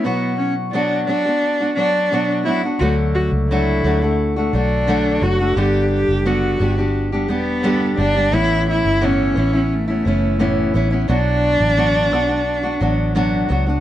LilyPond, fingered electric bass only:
\new Staff \with { instrumentName = "Fingered electric bass" } { \clef bass \time 4/4 \key b \minor \tempo 4 = 87 r1 | d,8. cis,8. d,4 b,,4 fis,,8 | g,,8. fis,,8. g,,4 e,,4 g,,8 | a,,8. g,,8. a,,4 fis,,4 a,,8 |
b,,8. a,,8. b,,4 a,,4 cis,8 | }